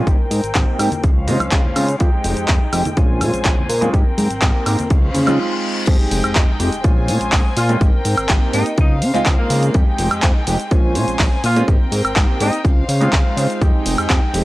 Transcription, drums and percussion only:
0.06 kick, closed hi-hat, cabasa, shaker
0.31 open hi-hat, cabasa
0.44 closed hi-hat, cabasa
0.55 kick, clap, closed hi-hat, cabasa
0.79 open hi-hat, cabasa, high woodblock
0.92 closed hi-hat, low conga, cabasa, shaker
1.04 kick, closed hi-hat, cabasa
1.28 open hi-hat, low conga, cabasa, shaker
1.40 closed hi-hat, high conga, cabasa, high woodblock, shaker
1.51 kick, clap, closed hi-hat, cabasa
1.64 low conga
1.76 open hi-hat, cabasa, high woodblock, shaker
1.88 closed hi-hat, cabasa, shaker
2.00 kick, closed hi-hat, cabasa
2.24 open hi-hat, cabasa
2.37 closed hi-hat, cabasa
2.48 kick, clap, closed hi-hat, cabasa
2.73 open hi-hat, cabasa, high woodblock
2.85 closed hi-hat, low conga, cabasa, shaker
2.96 kick, closed hi-hat, cabasa, shaker
3.20 open hi-hat, high conga, low conga, cabasa, high woodblock, shaker
3.33 closed hi-hat, cabasa, shaker
3.45 kick, clap, closed hi-hat, cabasa, shaker
3.59 low conga
3.70 open hi-hat, cabasa, shaker
3.82 closed hi-hat, high conga, cabasa, shaker
3.94 kick, closed hi-hat, cabasa
4.18 open hi-hat, high conga, cabasa, shaker
4.30 closed hi-hat, cabasa, shaker
4.42 kick, clap, closed hi-hat, cabasa
4.66 open hi-hat, cabasa, high woodblock
4.79 closed hi-hat, low conga, cabasa, shaker
4.90 kick, closed hi-hat, cabasa
5.15 open hi-hat, low conga, cabasa, shaker
5.27 closed hi-hat, high conga, cabasa, high woodblock, shaker
5.87 kick, closed hi-hat, crash, cabasa
6.11 open hi-hat, cabasa
6.24 closed hi-hat, cabasa, high woodblock
6.35 kick, clap, closed hi-hat, cabasa
6.60 open hi-hat, cabasa
6.72 closed hi-hat, cabasa
6.84 kick, closed hi-hat, cabasa
7.08 open hi-hat, cabasa
7.21 closed hi-hat, cabasa
7.32 kick, clap, open hi-hat, cabasa
7.57 open hi-hat, cabasa
7.69 closed hi-hat, cabasa
7.81 kick, closed hi-hat, cabasa
8.05 open hi-hat, cabasa
8.18 closed hi-hat, cabasa, high woodblock
8.29 kick, clap, closed hi-hat, cabasa
8.54 open hi-hat, cabasa
8.66 closed hi-hat, cabasa
8.78 kick, closed hi-hat, cabasa
9.02 open hi-hat, cabasa
9.15 closed hi-hat, cabasa
9.26 kick, clap, closed hi-hat, cabasa
9.50 open hi-hat, cabasa
9.63 closed hi-hat, cabasa
9.74 kick, closed hi-hat, cabasa
9.98 open hi-hat, cabasa
10.11 closed hi-hat, cabasa, high woodblock
10.22 kick, clap, closed hi-hat, cabasa
10.47 open hi-hat, cabasa
10.60 closed hi-hat, cabasa
10.71 kick, closed hi-hat, cabasa
10.95 open hi-hat, cabasa
11.08 closed hi-hat, cabasa
11.19 kick, clap, open hi-hat, cabasa
11.44 open hi-hat, cabasa
11.56 closed hi-hat, cabasa
11.68 kick, closed hi-hat, cabasa
11.92 open hi-hat, cabasa
12.05 closed hi-hat, cabasa, high woodblock
12.16 kick, clap, closed hi-hat, cabasa
12.41 open hi-hat, cabasa
12.53 closed hi-hat, cabasa
12.65 kick, closed hi-hat, cabasa
12.89 open hi-hat, cabasa
13.01 closed hi-hat, cabasa
13.13 kick, clap, closed hi-hat, cabasa
13.37 open hi-hat, cabasa
13.50 closed hi-hat, cabasa
13.61 kick, closed hi-hat, cabasa
13.86 open hi-hat, ride, cabasa
13.98 closed hi-hat, cabasa, high woodblock
14.10 kick, clap, closed hi-hat, cabasa
14.34 open hi-hat, ride, cabasa

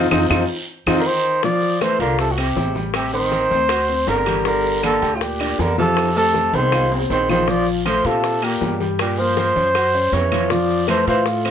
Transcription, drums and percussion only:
0.11 cowbell, high conga, high timbale, long guiro, claves, maracas
0.30 cowbell, high conga, high timbale, long guiro, claves, maracas
0.87 cowbell, high conga, high timbale, long guiro, claves, maracas
1.43 high bongo, high conga, long guiro, maracas
1.62 high bongo, high conga, maracas
1.81 high bongo, high conga, high timbale, low timbale, short guiro, claves, maracas
2.00 high bongo, high conga, high timbale, short guiro, maracas
2.18 high bongo, high conga, long guiro, maracas
2.38 high conga, high timbale, claves, maracas
2.56 high bongo, low bongo, high conga, low timbale, short guiro, maracas
2.75 high bongo, high conga, short guiro, maracas
2.94 high bongo, high conga, high timbale, long guiro, claves, maracas
3.13 high bongo, high conga, maracas
3.32 high bongo, high conga, high timbale, low timbale, short guiro, maracas
3.50 high bongo, high conga, short guiro, maracas
3.69 high bongo, high conga, high timbale, long guiro, claves, maracas
3.89 high conga
4.07 high bongo, low bongo, high conga, high timbale, low timbale, short guiro, maracas
4.26 high bongo, high conga, high timbale, short guiro, claves, maracas
4.45 high bongo, long guiro, maracas
4.64 high bongo, high conga
4.83 high bongo, high conga, high timbale, low timbale, short guiro, claves, maracas
5.02 high bongo, high conga, high timbale, short guiro, maracas
5.21 high bongo, high conga, long guiro, maracas
5.40 high conga, high timbale, claves
5.59 high bongo, low bongo, high conga, low timbale, short guiro, maracas
5.78 high bongo, high conga, short guiro, maracas
5.97 high bongo, high conga, high timbale, long guiro, claves, maracas
6.16 high bongo, high conga, maracas
6.34 high bongo, high conga, short guiro, maracas
6.53 high bongo, high conga, low timbale, short guiro, maracas
6.72 high bongo, low timbale, long guiro, claves, maracas
6.92 high conga, low timbale
7.10 high bongo, low bongo, high conga, low timbale, short guiro, maracas
7.29 high bongo, high conga, low timbale, short guiro, claves, maracas
7.48 high bongo, long guiro, maracas
7.67 high bongo, high conga, maracas
7.86 high bongo, high conga, high timbale, low timbale, short guiro, claves, maracas
8.05 high bongo, high conga, high timbale, short guiro, maracas
8.24 high bongo, high conga, long guiro, maracas
8.42 high conga, high timbale, claves
8.61 high bongo, low bongo, high conga, low timbale, short guiro, maracas
8.80 high bongo, high conga, short guiro, maracas
8.99 high bongo, high timbale, long guiro, claves, maracas
9.18 high bongo, high conga, maracas
9.37 high bongo, high conga, high timbale, low timbale, short guiro, maracas
9.56 high bongo, high conga, short guiro, maracas
9.75 high bongo, high conga, high timbale, long guiro, claves, maracas
9.94 high conga, maracas
10.13 high bongo, low bongo, high conga, high timbale, low timbale, short guiro, maracas
10.31 high bongo, high conga, high timbale, short guiro, claves, maracas
10.50 high bongo, high conga, long guiro, maracas
10.69 high bongo, high conga, maracas
10.88 high bongo, high conga, high timbale, low timbale, short guiro, claves, maracas
11.07 high bongo, high conga, high timbale, short guiro, maracas
11.26 high bongo, high conga, long guiro, maracas
11.45 high conga, high timbale, claves

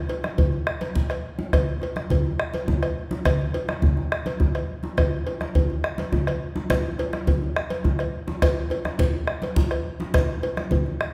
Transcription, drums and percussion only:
0.09 cowbell, djembe tone
0.24 bombo rim, djembe slap, high conga
0.38 bombo low, cowbell, djembe bass, low conga
0.53 djembe slap, djembe tone
0.67 bombo rim, djembe slap
0.81 cowbell, djembe slap, high conga
0.95 bombo low, djembe tone, low conga
1.10 bombo rim, cowbell
1.39 djembe slap, high conga, djembe tone
1.53 bombo rim, bombo low, cowbell, low conga, djembe bass
1.82 cowbell, djembe tone
1.96 bombo rim, djembe slap, high conga
2.10 bombo low, cowbell, djembe bass, low conga
2.25 djembe tone
2.39 bombo rim, djembe slap
2.53 cowbell, djembe slap, high conga
2.68 bombo low, djembe tone, djembe bass, low conga
2.83 bombo rim, cowbell
3.11 djembe slap, high conga, djembe tone
3.25 bombo rim, bombo low, cowbell, djembe slap, low conga, djembe bass
3.40 high conga
3.54 cowbell, djembe slap, high conga, djembe tone
3.68 bombo rim, djembe slap, high conga
3.82 bombo rim, bombo low, djembe slap, high conga, low conga, djembe bass
3.97 djembe tone
4.12 bombo rim, high conga
4.26 cowbell, djembe slap, high conga
4.40 bombo low, djembe slap, djembe tone, low conga, djembe bass
4.55 bombo rim, cowbell
4.83 djembe slap, high conga, djembe tone
4.97 bombo rim, bombo low, cowbell, low conga, djembe bass
5.27 cowbell, djembe tone
5.41 bombo rim, djembe slap, high conga
5.55 bombo low, cowbell, low conga, djembe bass
5.70 djembe slap, djembe tone
5.84 bombo rim, djembe slap
5.98 cowbell, djembe slap, high conga
6.12 bombo low, djembe tone, djembe bass, low conga
6.27 bombo rim, cowbell
6.56 djembe slap, high conga, djembe tone
6.70 bombo rim, bombo low, cowbell, low conga, djembe bass
6.99 cowbell, djembe tone
7.13 bombo rim, djembe slap, high conga
7.27 bombo low, cowbell, low conga, djembe bass
7.42 djembe slap, djembe tone
7.56 bombo rim, djembe slap
7.70 cowbell, djembe slap, high conga
7.84 bombo low, djembe tone, djembe bass, low conga
7.99 bombo rim, cowbell
8.28 djembe slap, djembe tone, high conga
8.42 bombo rim, bombo low, cowbell, low conga, djembe bass
8.70 cowbell, djembe tone
8.85 bombo rim, djembe slap, high conga
8.99 bombo low, cowbell, djembe bass, low conga
9.13 djembe slap, djembe tone
9.27 bombo rim, djembe slap
9.42 cowbell, djembe slap, high conga
9.56 bombo low, djembe tone, low conga, djembe bass
9.71 bombo rim, cowbell
10.00 djembe slap, high conga, djembe tone
10.14 bombo rim, bombo low, cowbell, low conga, djembe bass
10.29 bombo rim
10.43 bombo rim, cowbell, djembe tone
10.57 bombo rim, djembe slap, high conga
10.71 bombo low, cowbell, low conga, djembe bass
10.86 djembe tone
11.00 bombo rim, high conga

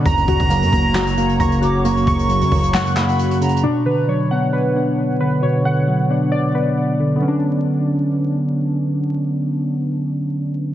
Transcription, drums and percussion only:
0.06 kick, closed hi-hat
0.17 closed hi-hat
0.28 kick, closed hi-hat
0.40 kick, closed hi-hat
0.50 closed hi-hat
0.62 closed hi-hat
0.73 kick, closed hi-hat
0.95 snare, clap
1.07 closed hi-hat
1.18 closed hi-hat
1.29 closed hi-hat
1.40 kick, closed hi-hat
1.52 closed hi-hat
1.62 closed hi-hat
1.85 closed hi-hat
1.97 closed hi-hat
2.07 kick, closed hi-hat
2.19 closed hi-hat
2.29 closed hi-hat
2.41 closed hi-hat
2.52 kick, closed hi-hat, open hi-hat
2.64 closed hi-hat
2.74 snare, clap
2.86 closed hi-hat
2.97 snare, clap
3.09 closed hi-hat
3.19 closed hi-hat
3.31 closed hi-hat
3.41 closed hi-hat
3.49 closed hi-hat
3.56 closed hi-hat

